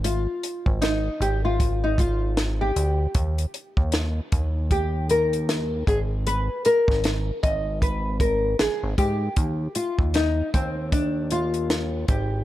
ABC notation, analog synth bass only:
X:1
M:4/4
L:1/16
Q:"Swing 16ths" 1/4=77
K:Eb
V:1 name="Analog synth bass" clef=bass
A,,,2 z A,,,3 A,,,8 D,,2 | E,,2 z E,,3 E,,8 A,,,2- | A,,,2 z A,,,3 A,,,6 A,,, A,,, A,,2 | E,,2 z E,,3 E,,8 A,,,2 |]